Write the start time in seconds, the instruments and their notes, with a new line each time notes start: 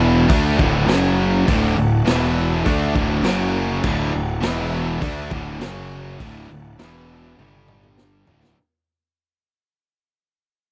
Already playing: picked electric bass E1, distorted electric guitar E2 B2 E3, tonewheel organ E4 B4 E5
0.26 picked electric bass D2, distorted electric guitar D3 A3 D4, tonewheel organ D4 F#4 A4 F#5, kick, open hi-hat
0.57 picked electric bass D1, distorted electric guitar D2 A2 D3, kick
0.86 picked electric bass F#1, distorted electric guitar F#2 C#3 F#3, tonewheel organ F#4 C#5 F#5, snare, open hi-hat
1.46 picked electric bass D1, distorted electric guitar D2 A2 D3, tonewheel organ D4 F#4 A4 F#5, kick, open hi-hat
1.75 picked electric bass D1, distorted electric guitar D2 A2
2.05 picked electric bass E1, distorted electric guitar E2 B2 E3, tonewheel organ E4 B4 E5, snare, open hi-hat
2.63 picked electric bass D2, distorted electric guitar D3 A3 D4, tonewheel organ D4 F#4 A4 F#5, kick, open hi-hat
2.94 picked electric bass D1, distorted electric guitar D2 A2 D3, kick
3.21 picked electric bass F#1, distorted electric guitar F#2, tonewheel organ F#4 C#5 F#5, snare, open hi-hat
3.25 distorted electric guitar C#3 F#3
3.81 picked electric bass D1, distorted electric guitar D2 A2 D3, tonewheel organ D4 F#4 A4 F#5, kick, crash
4.12 picked electric bass D1, distorted electric guitar D2 A2
4.40 picked electric bass E1, distorted electric guitar E2 B2 E3, tonewheel organ E5, snare, open hi-hat
4.45 tonewheel organ E4 B4
4.99 picked electric bass D2, distorted electric guitar D3 A3 D4, tonewheel organ D4 F#4 A4 F#5, kick, open hi-hat
5.30 picked electric bass D1, distorted electric guitar D2 A2 D3, kick
5.58 picked electric bass F#1, distorted electric guitar F#2 C#3 F#3, tonewheel organ F#4 C#5 F#5, snare, open hi-hat
6.16 picked electric bass D1, tonewheel organ D4 F#4 A4 F#5, kick, open hi-hat
6.20 distorted electric guitar D2 A2 D3
6.49 picked electric bass D1, distorted electric guitar D2 A2
6.77 picked electric bass E1, distorted electric guitar E2 B2 E3, tonewheel organ E4 B4 E5, snare, open hi-hat
7.37 picked electric bass G1, distorted electric guitar G2 D3 G3, tonewheel organ D4 G4 D5, high tom
7.68 mid tom
7.83 mid tom
7.98 snare
8.26 picked electric bass D1, distorted electric guitar D2 A2 D3, floor tom
8.44 snare